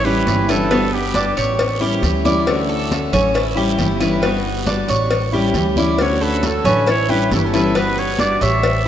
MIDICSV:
0, 0, Header, 1, 8, 480
1, 0, Start_track
1, 0, Tempo, 440529
1, 768, Time_signature, 4, 2, 24, 8
1, 9675, End_track
2, 0, Start_track
2, 0, Title_t, "Trumpet"
2, 0, Program_c, 0, 56
2, 59, Note_on_c, 0, 71, 105
2, 546, Note_on_c, 0, 69, 101
2, 563, Note_off_c, 0, 71, 0
2, 1021, Note_on_c, 0, 67, 93
2, 1038, Note_off_c, 0, 69, 0
2, 1975, Note_off_c, 0, 67, 0
2, 6554, Note_on_c, 0, 73, 92
2, 6796, Note_on_c, 0, 71, 85
2, 6812, Note_off_c, 0, 73, 0
2, 7043, Note_on_c, 0, 69, 91
2, 7059, Note_off_c, 0, 71, 0
2, 7265, Note_off_c, 0, 69, 0
2, 7275, Note_on_c, 0, 71, 82
2, 7485, Note_off_c, 0, 71, 0
2, 7512, Note_on_c, 0, 73, 109
2, 7740, Note_on_c, 0, 71, 97
2, 7757, Note_off_c, 0, 73, 0
2, 7994, Note_on_c, 0, 69, 85
2, 8010, Note_off_c, 0, 71, 0
2, 8055, Note_on_c, 0, 71, 73
2, 8071, Note_off_c, 0, 69, 0
2, 8127, Note_on_c, 0, 69, 89
2, 8144, Note_off_c, 0, 71, 0
2, 8463, Note_on_c, 0, 71, 102
2, 8480, Note_off_c, 0, 69, 0
2, 8703, Note_on_c, 0, 73, 93
2, 8719, Note_off_c, 0, 71, 0
2, 8932, Note_off_c, 0, 73, 0
2, 8938, Note_on_c, 0, 74, 108
2, 9171, Note_on_c, 0, 76, 105
2, 9187, Note_off_c, 0, 74, 0
2, 9675, Note_off_c, 0, 76, 0
2, 9675, End_track
3, 0, Start_track
3, 0, Title_t, "Cuban tres"
3, 0, Program_c, 1, 25
3, 51, Note_on_c, 1, 67, 80
3, 515, Note_off_c, 1, 67, 0
3, 531, Note_on_c, 1, 71, 87
3, 762, Note_off_c, 1, 71, 0
3, 771, Note_on_c, 1, 59, 88
3, 1235, Note_off_c, 1, 59, 0
3, 1253, Note_on_c, 1, 62, 74
3, 1484, Note_off_c, 1, 62, 0
3, 1494, Note_on_c, 1, 73, 84
3, 1957, Note_off_c, 1, 73, 0
3, 1971, Note_on_c, 1, 67, 86
3, 2435, Note_off_c, 1, 67, 0
3, 2453, Note_on_c, 1, 74, 89
3, 2916, Note_off_c, 1, 74, 0
3, 2930, Note_on_c, 1, 69, 76
3, 3395, Note_off_c, 1, 69, 0
3, 3412, Note_on_c, 1, 61, 98
3, 3643, Note_off_c, 1, 61, 0
3, 3647, Note_on_c, 1, 64, 77
3, 3880, Note_off_c, 1, 64, 0
3, 3888, Note_on_c, 1, 67, 76
3, 4354, Note_off_c, 1, 67, 0
3, 4366, Note_on_c, 1, 71, 86
3, 4600, Note_off_c, 1, 71, 0
3, 4607, Note_on_c, 1, 59, 80
3, 5073, Note_off_c, 1, 59, 0
3, 5083, Note_on_c, 1, 62, 65
3, 5319, Note_off_c, 1, 62, 0
3, 5330, Note_on_c, 1, 73, 83
3, 5795, Note_off_c, 1, 73, 0
3, 5812, Note_on_c, 1, 67, 80
3, 6276, Note_off_c, 1, 67, 0
3, 6286, Note_on_c, 1, 74, 74
3, 6753, Note_off_c, 1, 74, 0
3, 6766, Note_on_c, 1, 69, 74
3, 7233, Note_off_c, 1, 69, 0
3, 7246, Note_on_c, 1, 61, 94
3, 7479, Note_off_c, 1, 61, 0
3, 7480, Note_on_c, 1, 64, 68
3, 7716, Note_off_c, 1, 64, 0
3, 7730, Note_on_c, 1, 67, 80
3, 8194, Note_off_c, 1, 67, 0
3, 8211, Note_on_c, 1, 71, 81
3, 8442, Note_off_c, 1, 71, 0
3, 8446, Note_on_c, 1, 59, 86
3, 8912, Note_off_c, 1, 59, 0
3, 8925, Note_on_c, 1, 62, 67
3, 9159, Note_off_c, 1, 62, 0
3, 9168, Note_on_c, 1, 73, 82
3, 9633, Note_off_c, 1, 73, 0
3, 9675, End_track
4, 0, Start_track
4, 0, Title_t, "Nylon-string guitar"
4, 0, Program_c, 2, 24
4, 71, Note_on_c, 2, 64, 88
4, 539, Note_off_c, 2, 64, 0
4, 545, Note_on_c, 2, 62, 81
4, 1032, Note_off_c, 2, 62, 0
4, 1032, Note_on_c, 2, 59, 69
4, 1980, Note_off_c, 2, 59, 0
4, 6547, Note_on_c, 2, 66, 81
4, 6793, Note_off_c, 2, 66, 0
4, 6793, Note_on_c, 2, 62, 72
4, 7030, Note_off_c, 2, 62, 0
4, 7030, Note_on_c, 2, 61, 77
4, 7259, Note_off_c, 2, 61, 0
4, 7270, Note_on_c, 2, 62, 73
4, 7483, Note_off_c, 2, 62, 0
4, 7507, Note_on_c, 2, 64, 80
4, 7744, Note_off_c, 2, 64, 0
4, 7744, Note_on_c, 2, 62, 72
4, 7968, Note_off_c, 2, 62, 0
4, 7968, Note_on_c, 2, 61, 82
4, 8042, Note_off_c, 2, 61, 0
4, 8042, Note_on_c, 2, 62, 68
4, 8130, Note_off_c, 2, 62, 0
4, 8130, Note_on_c, 2, 61, 80
4, 8450, Note_off_c, 2, 61, 0
4, 8450, Note_on_c, 2, 62, 78
4, 8690, Note_off_c, 2, 62, 0
4, 8690, Note_on_c, 2, 64, 84
4, 8929, Note_off_c, 2, 64, 0
4, 8931, Note_on_c, 2, 66, 90
4, 9178, Note_off_c, 2, 66, 0
4, 9178, Note_on_c, 2, 67, 86
4, 9675, Note_off_c, 2, 67, 0
4, 9675, End_track
5, 0, Start_track
5, 0, Title_t, "Steel-string acoustic guitar"
5, 0, Program_c, 3, 25
5, 52, Note_on_c, 3, 64, 69
5, 63, Note_on_c, 3, 61, 73
5, 73, Note_on_c, 3, 55, 62
5, 281, Note_off_c, 3, 64, 0
5, 286, Note_off_c, 3, 55, 0
5, 286, Note_off_c, 3, 61, 0
5, 288, Note_on_c, 3, 52, 53
5, 299, Note_on_c, 3, 55, 52
5, 307, Note_on_c, 3, 61, 61
5, 310, Note_on_c, 3, 64, 63
5, 513, Note_off_c, 3, 64, 0
5, 518, Note_off_c, 3, 52, 0
5, 524, Note_off_c, 3, 55, 0
5, 526, Note_on_c, 3, 64, 83
5, 528, Note_off_c, 3, 61, 0
5, 541, Note_on_c, 3, 61, 68
5, 546, Note_on_c, 3, 55, 65
5, 757, Note_off_c, 3, 55, 0
5, 758, Note_off_c, 3, 64, 0
5, 765, Note_off_c, 3, 61, 0
5, 770, Note_on_c, 3, 55, 73
5, 781, Note_on_c, 3, 59, 88
5, 789, Note_on_c, 3, 66, 78
5, 1240, Note_off_c, 3, 55, 0
5, 1245, Note_off_c, 3, 59, 0
5, 1249, Note_off_c, 3, 66, 0
5, 1254, Note_on_c, 3, 55, 48
5, 1259, Note_on_c, 3, 59, 64
5, 1721, Note_off_c, 3, 55, 0
5, 1724, Note_off_c, 3, 59, 0
5, 1966, Note_on_c, 3, 64, 75
5, 1974, Note_on_c, 3, 61, 73
5, 1988, Note_on_c, 3, 55, 64
5, 2197, Note_off_c, 3, 64, 0
5, 2201, Note_off_c, 3, 55, 0
5, 2201, Note_off_c, 3, 61, 0
5, 2205, Note_on_c, 3, 52, 53
5, 2214, Note_on_c, 3, 55, 59
5, 2219, Note_on_c, 3, 61, 54
5, 2225, Note_on_c, 3, 64, 57
5, 2437, Note_off_c, 3, 52, 0
5, 2437, Note_off_c, 3, 64, 0
5, 2441, Note_off_c, 3, 55, 0
5, 2444, Note_off_c, 3, 61, 0
5, 2450, Note_on_c, 3, 64, 80
5, 2462, Note_on_c, 3, 61, 75
5, 2469, Note_on_c, 3, 55, 61
5, 2679, Note_off_c, 3, 64, 0
5, 2685, Note_off_c, 3, 61, 0
5, 2685, Note_on_c, 3, 50, 75
5, 2689, Note_off_c, 3, 55, 0
5, 2695, Note_on_c, 3, 57, 86
5, 2699, Note_on_c, 3, 61, 84
5, 2706, Note_on_c, 3, 66, 81
5, 3152, Note_off_c, 3, 50, 0
5, 3162, Note_off_c, 3, 57, 0
5, 3164, Note_off_c, 3, 61, 0
5, 3165, Note_on_c, 3, 50, 52
5, 3168, Note_off_c, 3, 66, 0
5, 3177, Note_on_c, 3, 57, 58
5, 3183, Note_on_c, 3, 61, 55
5, 3191, Note_on_c, 3, 66, 57
5, 3637, Note_off_c, 3, 50, 0
5, 3639, Note_off_c, 3, 61, 0
5, 3643, Note_off_c, 3, 57, 0
5, 3650, Note_off_c, 3, 66, 0
5, 3873, Note_on_c, 3, 64, 75
5, 3884, Note_on_c, 3, 61, 66
5, 3892, Note_on_c, 3, 55, 64
5, 4111, Note_off_c, 3, 64, 0
5, 4117, Note_off_c, 3, 61, 0
5, 4121, Note_off_c, 3, 55, 0
5, 4126, Note_on_c, 3, 52, 55
5, 4132, Note_on_c, 3, 55, 59
5, 4142, Note_on_c, 3, 61, 59
5, 4149, Note_on_c, 3, 64, 61
5, 4350, Note_off_c, 3, 64, 0
5, 4358, Note_off_c, 3, 52, 0
5, 4359, Note_off_c, 3, 61, 0
5, 4361, Note_off_c, 3, 55, 0
5, 4363, Note_on_c, 3, 64, 81
5, 4372, Note_on_c, 3, 61, 61
5, 4383, Note_on_c, 3, 55, 68
5, 4580, Note_off_c, 3, 55, 0
5, 4593, Note_on_c, 3, 55, 78
5, 4596, Note_off_c, 3, 64, 0
5, 4601, Note_off_c, 3, 61, 0
5, 4607, Note_on_c, 3, 59, 84
5, 4616, Note_on_c, 3, 66, 81
5, 5071, Note_off_c, 3, 55, 0
5, 5078, Note_off_c, 3, 59, 0
5, 5083, Note_off_c, 3, 66, 0
5, 5086, Note_on_c, 3, 55, 52
5, 5092, Note_on_c, 3, 59, 55
5, 5100, Note_on_c, 3, 66, 61
5, 5558, Note_off_c, 3, 55, 0
5, 5561, Note_off_c, 3, 59, 0
5, 5565, Note_off_c, 3, 66, 0
5, 5802, Note_on_c, 3, 64, 69
5, 5814, Note_on_c, 3, 61, 69
5, 5825, Note_on_c, 3, 55, 61
5, 6036, Note_off_c, 3, 64, 0
5, 6042, Note_off_c, 3, 61, 0
5, 6047, Note_off_c, 3, 55, 0
5, 6053, Note_on_c, 3, 52, 53
5, 6060, Note_on_c, 3, 55, 59
5, 6068, Note_on_c, 3, 61, 55
5, 6071, Note_on_c, 3, 64, 55
5, 6280, Note_off_c, 3, 64, 0
5, 6281, Note_off_c, 3, 52, 0
5, 6285, Note_off_c, 3, 55, 0
5, 6289, Note_off_c, 3, 61, 0
5, 6293, Note_on_c, 3, 64, 78
5, 6302, Note_on_c, 3, 61, 71
5, 6315, Note_on_c, 3, 55, 54
5, 6521, Note_off_c, 3, 64, 0
5, 6525, Note_off_c, 3, 61, 0
5, 6532, Note_off_c, 3, 55, 0
5, 6539, Note_on_c, 3, 50, 75
5, 6545, Note_on_c, 3, 57, 81
5, 6551, Note_on_c, 3, 61, 82
5, 6556, Note_on_c, 3, 66, 97
5, 7004, Note_off_c, 3, 50, 0
5, 7007, Note_off_c, 3, 57, 0
5, 7010, Note_off_c, 3, 61, 0
5, 7012, Note_off_c, 3, 66, 0
5, 7015, Note_on_c, 3, 50, 46
5, 7025, Note_on_c, 3, 57, 54
5, 7028, Note_on_c, 3, 61, 53
5, 7039, Note_on_c, 3, 66, 61
5, 7482, Note_off_c, 3, 50, 0
5, 7487, Note_off_c, 3, 57, 0
5, 7488, Note_off_c, 3, 61, 0
5, 7494, Note_off_c, 3, 66, 0
5, 7723, Note_on_c, 3, 64, 70
5, 7736, Note_on_c, 3, 61, 66
5, 7746, Note_on_c, 3, 55, 65
5, 7956, Note_off_c, 3, 64, 0
5, 7962, Note_off_c, 3, 61, 0
5, 7967, Note_off_c, 3, 55, 0
5, 7972, Note_on_c, 3, 52, 51
5, 7979, Note_on_c, 3, 55, 54
5, 7984, Note_on_c, 3, 61, 65
5, 7993, Note_on_c, 3, 64, 58
5, 8198, Note_off_c, 3, 64, 0
5, 8200, Note_off_c, 3, 52, 0
5, 8204, Note_off_c, 3, 55, 0
5, 8206, Note_off_c, 3, 61, 0
5, 8211, Note_on_c, 3, 64, 77
5, 8223, Note_on_c, 3, 61, 72
5, 8229, Note_on_c, 3, 55, 64
5, 8428, Note_off_c, 3, 55, 0
5, 8440, Note_off_c, 3, 64, 0
5, 8441, Note_on_c, 3, 55, 73
5, 8446, Note_off_c, 3, 61, 0
5, 8454, Note_on_c, 3, 59, 87
5, 8466, Note_on_c, 3, 66, 89
5, 8911, Note_off_c, 3, 55, 0
5, 8920, Note_off_c, 3, 59, 0
5, 8924, Note_on_c, 3, 55, 54
5, 8926, Note_off_c, 3, 66, 0
5, 8937, Note_on_c, 3, 59, 52
5, 8949, Note_on_c, 3, 66, 53
5, 9396, Note_off_c, 3, 55, 0
5, 9402, Note_off_c, 3, 59, 0
5, 9408, Note_off_c, 3, 66, 0
5, 9675, End_track
6, 0, Start_track
6, 0, Title_t, "Upright bass"
6, 0, Program_c, 4, 32
6, 0, Note_on_c, 4, 33, 95
6, 243, Note_off_c, 4, 33, 0
6, 293, Note_on_c, 4, 31, 91
6, 1423, Note_off_c, 4, 31, 0
6, 1489, Note_on_c, 4, 33, 89
6, 2165, Note_off_c, 4, 33, 0
6, 2205, Note_on_c, 4, 38, 99
6, 3339, Note_off_c, 4, 38, 0
6, 3408, Note_on_c, 4, 33, 96
6, 4084, Note_off_c, 4, 33, 0
6, 4117, Note_on_c, 4, 31, 90
6, 5255, Note_off_c, 4, 31, 0
6, 5323, Note_on_c, 4, 33, 89
6, 6002, Note_off_c, 4, 33, 0
6, 6036, Note_on_c, 4, 38, 96
6, 7174, Note_off_c, 4, 38, 0
6, 7243, Note_on_c, 4, 33, 93
6, 7921, Note_off_c, 4, 33, 0
6, 7966, Note_on_c, 4, 31, 90
6, 9098, Note_off_c, 4, 31, 0
6, 9167, Note_on_c, 4, 33, 95
6, 9675, Note_off_c, 4, 33, 0
6, 9675, End_track
7, 0, Start_track
7, 0, Title_t, "Muted steel-string acoustic guitar strokes"
7, 1735, Note_on_c, 9, 29, 62
7, 1844, Note_off_c, 9, 29, 0
7, 3646, Note_on_c, 9, 29, 70
7, 3755, Note_off_c, 9, 29, 0
7, 5572, Note_on_c, 9, 29, 57
7, 5681, Note_off_c, 9, 29, 0
7, 7493, Note_on_c, 9, 29, 68
7, 7602, Note_off_c, 9, 29, 0
7, 9407, Note_on_c, 9, 29, 73
7, 9516, Note_off_c, 9, 29, 0
7, 9675, End_track
8, 0, Start_track
8, 0, Title_t, "Drums"
8, 50, Note_on_c, 9, 63, 38
8, 159, Note_off_c, 9, 63, 0
8, 293, Note_on_c, 9, 56, 64
8, 293, Note_on_c, 9, 63, 90
8, 294, Note_on_c, 9, 73, 81
8, 402, Note_off_c, 9, 56, 0
8, 402, Note_off_c, 9, 63, 0
8, 403, Note_off_c, 9, 73, 0
8, 534, Note_on_c, 9, 63, 36
8, 534, Note_on_c, 9, 73, 80
8, 535, Note_on_c, 9, 56, 76
8, 643, Note_off_c, 9, 63, 0
8, 643, Note_off_c, 9, 73, 0
8, 644, Note_off_c, 9, 56, 0
8, 772, Note_on_c, 9, 56, 104
8, 772, Note_on_c, 9, 63, 35
8, 774, Note_on_c, 9, 74, 76
8, 881, Note_off_c, 9, 56, 0
8, 881, Note_off_c, 9, 63, 0
8, 883, Note_off_c, 9, 74, 0
8, 1008, Note_on_c, 9, 63, 32
8, 1117, Note_off_c, 9, 63, 0
8, 1245, Note_on_c, 9, 63, 109
8, 1253, Note_on_c, 9, 56, 75
8, 1254, Note_on_c, 9, 73, 72
8, 1354, Note_off_c, 9, 63, 0
8, 1362, Note_off_c, 9, 56, 0
8, 1363, Note_off_c, 9, 73, 0
8, 1492, Note_on_c, 9, 73, 75
8, 1496, Note_on_c, 9, 56, 69
8, 1601, Note_off_c, 9, 73, 0
8, 1605, Note_off_c, 9, 56, 0
8, 1729, Note_on_c, 9, 63, 37
8, 1730, Note_on_c, 9, 74, 74
8, 1733, Note_on_c, 9, 56, 115
8, 1838, Note_off_c, 9, 63, 0
8, 1839, Note_off_c, 9, 74, 0
8, 1842, Note_off_c, 9, 56, 0
8, 1963, Note_on_c, 9, 63, 36
8, 2072, Note_off_c, 9, 63, 0
8, 2205, Note_on_c, 9, 63, 83
8, 2212, Note_on_c, 9, 56, 65
8, 2212, Note_on_c, 9, 73, 83
8, 2314, Note_off_c, 9, 63, 0
8, 2321, Note_off_c, 9, 56, 0
8, 2321, Note_off_c, 9, 73, 0
8, 2455, Note_on_c, 9, 63, 90
8, 2457, Note_on_c, 9, 73, 76
8, 2564, Note_off_c, 9, 63, 0
8, 2566, Note_off_c, 9, 73, 0
8, 2691, Note_on_c, 9, 63, 38
8, 2693, Note_on_c, 9, 56, 113
8, 2697, Note_on_c, 9, 74, 71
8, 2800, Note_off_c, 9, 63, 0
8, 2802, Note_off_c, 9, 56, 0
8, 2806, Note_off_c, 9, 74, 0
8, 2933, Note_on_c, 9, 63, 38
8, 3042, Note_off_c, 9, 63, 0
8, 3170, Note_on_c, 9, 73, 70
8, 3177, Note_on_c, 9, 63, 99
8, 3180, Note_on_c, 9, 56, 77
8, 3279, Note_off_c, 9, 73, 0
8, 3286, Note_off_c, 9, 63, 0
8, 3289, Note_off_c, 9, 56, 0
8, 3411, Note_on_c, 9, 73, 74
8, 3416, Note_on_c, 9, 56, 68
8, 3419, Note_on_c, 9, 63, 37
8, 3419, Note_on_c, 9, 64, 90
8, 3520, Note_off_c, 9, 73, 0
8, 3525, Note_off_c, 9, 56, 0
8, 3528, Note_off_c, 9, 63, 0
8, 3528, Note_off_c, 9, 64, 0
8, 3643, Note_on_c, 9, 74, 80
8, 3653, Note_on_c, 9, 56, 124
8, 3653, Note_on_c, 9, 63, 41
8, 3752, Note_off_c, 9, 74, 0
8, 3762, Note_off_c, 9, 56, 0
8, 3762, Note_off_c, 9, 63, 0
8, 3902, Note_on_c, 9, 63, 39
8, 4011, Note_off_c, 9, 63, 0
8, 4125, Note_on_c, 9, 56, 69
8, 4127, Note_on_c, 9, 73, 79
8, 4137, Note_on_c, 9, 63, 83
8, 4234, Note_off_c, 9, 56, 0
8, 4236, Note_off_c, 9, 73, 0
8, 4246, Note_off_c, 9, 63, 0
8, 4363, Note_on_c, 9, 56, 74
8, 4366, Note_on_c, 9, 73, 73
8, 4376, Note_on_c, 9, 63, 35
8, 4472, Note_off_c, 9, 56, 0
8, 4475, Note_off_c, 9, 73, 0
8, 4485, Note_off_c, 9, 63, 0
8, 4606, Note_on_c, 9, 56, 105
8, 4608, Note_on_c, 9, 74, 73
8, 4613, Note_on_c, 9, 63, 37
8, 4715, Note_off_c, 9, 56, 0
8, 4717, Note_off_c, 9, 74, 0
8, 4722, Note_off_c, 9, 63, 0
8, 4849, Note_on_c, 9, 63, 38
8, 4958, Note_off_c, 9, 63, 0
8, 5081, Note_on_c, 9, 73, 74
8, 5085, Note_on_c, 9, 63, 99
8, 5089, Note_on_c, 9, 56, 72
8, 5190, Note_off_c, 9, 73, 0
8, 5194, Note_off_c, 9, 63, 0
8, 5198, Note_off_c, 9, 56, 0
8, 5322, Note_on_c, 9, 56, 71
8, 5324, Note_on_c, 9, 73, 79
8, 5431, Note_off_c, 9, 56, 0
8, 5433, Note_off_c, 9, 73, 0
8, 5558, Note_on_c, 9, 74, 72
8, 5560, Note_on_c, 9, 63, 36
8, 5563, Note_on_c, 9, 56, 117
8, 5667, Note_off_c, 9, 74, 0
8, 5669, Note_off_c, 9, 63, 0
8, 5672, Note_off_c, 9, 56, 0
8, 5799, Note_on_c, 9, 63, 36
8, 5907, Note_off_c, 9, 63, 0
8, 6037, Note_on_c, 9, 63, 83
8, 6038, Note_on_c, 9, 73, 72
8, 6044, Note_on_c, 9, 56, 68
8, 6146, Note_off_c, 9, 63, 0
8, 6147, Note_off_c, 9, 73, 0
8, 6153, Note_off_c, 9, 56, 0
8, 6277, Note_on_c, 9, 63, 83
8, 6285, Note_on_c, 9, 73, 75
8, 6386, Note_off_c, 9, 63, 0
8, 6394, Note_off_c, 9, 73, 0
8, 6517, Note_on_c, 9, 63, 36
8, 6521, Note_on_c, 9, 56, 109
8, 6527, Note_on_c, 9, 74, 76
8, 6626, Note_off_c, 9, 63, 0
8, 6630, Note_off_c, 9, 56, 0
8, 6636, Note_off_c, 9, 74, 0
8, 6764, Note_on_c, 9, 63, 37
8, 6873, Note_off_c, 9, 63, 0
8, 7004, Note_on_c, 9, 56, 77
8, 7007, Note_on_c, 9, 73, 78
8, 7008, Note_on_c, 9, 63, 93
8, 7113, Note_off_c, 9, 56, 0
8, 7116, Note_off_c, 9, 73, 0
8, 7117, Note_off_c, 9, 63, 0
8, 7240, Note_on_c, 9, 63, 37
8, 7240, Note_on_c, 9, 64, 88
8, 7251, Note_on_c, 9, 56, 65
8, 7251, Note_on_c, 9, 73, 70
8, 7349, Note_off_c, 9, 63, 0
8, 7349, Note_off_c, 9, 64, 0
8, 7359, Note_off_c, 9, 56, 0
8, 7360, Note_off_c, 9, 73, 0
8, 7480, Note_on_c, 9, 63, 39
8, 7490, Note_on_c, 9, 56, 112
8, 7497, Note_on_c, 9, 74, 74
8, 7589, Note_off_c, 9, 63, 0
8, 7599, Note_off_c, 9, 56, 0
8, 7606, Note_off_c, 9, 74, 0
8, 7722, Note_on_c, 9, 63, 37
8, 7831, Note_off_c, 9, 63, 0
8, 7968, Note_on_c, 9, 63, 90
8, 7970, Note_on_c, 9, 56, 68
8, 7979, Note_on_c, 9, 73, 83
8, 8077, Note_off_c, 9, 63, 0
8, 8079, Note_off_c, 9, 56, 0
8, 8088, Note_off_c, 9, 73, 0
8, 8206, Note_on_c, 9, 63, 36
8, 8212, Note_on_c, 9, 56, 75
8, 8215, Note_on_c, 9, 73, 74
8, 8315, Note_off_c, 9, 63, 0
8, 8321, Note_off_c, 9, 56, 0
8, 8324, Note_off_c, 9, 73, 0
8, 8444, Note_on_c, 9, 63, 36
8, 8447, Note_on_c, 9, 56, 97
8, 8454, Note_on_c, 9, 74, 76
8, 8552, Note_off_c, 9, 63, 0
8, 8556, Note_off_c, 9, 56, 0
8, 8563, Note_off_c, 9, 74, 0
8, 8684, Note_on_c, 9, 63, 37
8, 8793, Note_off_c, 9, 63, 0
8, 8920, Note_on_c, 9, 63, 103
8, 8929, Note_on_c, 9, 56, 72
8, 8931, Note_on_c, 9, 73, 74
8, 9029, Note_off_c, 9, 63, 0
8, 9038, Note_off_c, 9, 56, 0
8, 9040, Note_off_c, 9, 73, 0
8, 9165, Note_on_c, 9, 56, 67
8, 9176, Note_on_c, 9, 73, 72
8, 9274, Note_off_c, 9, 56, 0
8, 9285, Note_off_c, 9, 73, 0
8, 9405, Note_on_c, 9, 63, 37
8, 9408, Note_on_c, 9, 56, 109
8, 9416, Note_on_c, 9, 74, 77
8, 9514, Note_off_c, 9, 63, 0
8, 9517, Note_off_c, 9, 56, 0
8, 9525, Note_off_c, 9, 74, 0
8, 9675, End_track
0, 0, End_of_file